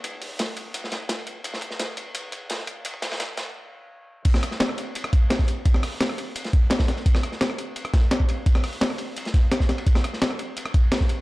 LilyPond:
\new DrumStaff \with { instrumentName = "Drums" } \drummode { \time 4/4 \tempo 4 = 171 <hh bd cymr>8 <hh hho>8 <hh bd cymr sn>8 <hh cymr>8 <hh bd cymr>16 sn16 <hh cymr sn>8 <hh bd cymr sn>16 cymr16 <hh cymr>8 | <hh bd cymr>16 sn16 <hh bd cymr>16 sn16 <hh bd cymr sn>8 <hh bd cymr>8 <hh bd cymr>8 <hh bd cymr>8 <hh bd cymr sn>16 sn16 <hh bd cymr>8 | <hh bd cymr>16 bd16 <hh bd cymr sn>16 <bd cymr sn>16 <hh bd cymr sn>16 bd16 <hh bd cymr sn>16 bd16 r4 r4 | <cymc hh bd cymr>16 <ss sn>16 <hh cymr ss>16 sn16 <hh cymr sn>16 ss16 <hh cymr>8 <hh cymr>16 <hh ss>16 <hh bd cymr>8 <hh cymr sn>16 <bd sn>16 <hh cymr>8 |
<hh bd cymr>16 <ss sn>16 <hh hho ss>8 <hh cymr sn>16 ss16 <hh cymr>8 <hh cymr>16 <hh sn>16 <hh bd>8 <hh cymr sn>16 <bd cymr sn>16 <hh cymr sn>16 sn16 | <hh bd cymr>16 <ss sn>16 <hh cymr ss>16 sn16 <hh cymr sn>16 ss16 <hh cymr>8 <hh cymr>16 <hh ss>16 <hh bd cymr sn>8 <hh cymr sn>16 bd16 <hh cymr>8 | <hh bd cymr>16 <hh ss sn>16 <hh hho ss>16 hh16 <hh cymr sn>16 ss16 <hh cymr>8 <hh cymr>16 <hh sn>16 <hh bd cymr sn>8 <hh cymr sn>16 <bd sn>16 <hh cymr sn>16 cymr16 | <hh bd cymr>16 <ss sn>16 <hh cymr ss>16 sn16 <hh cymr sn>16 ss16 <hh cymr>8 <hh cymr>16 <hh ss>16 <hh bd cymr>8 <hh cymr sn>16 <bd sn>16 <hh cymr>8 | }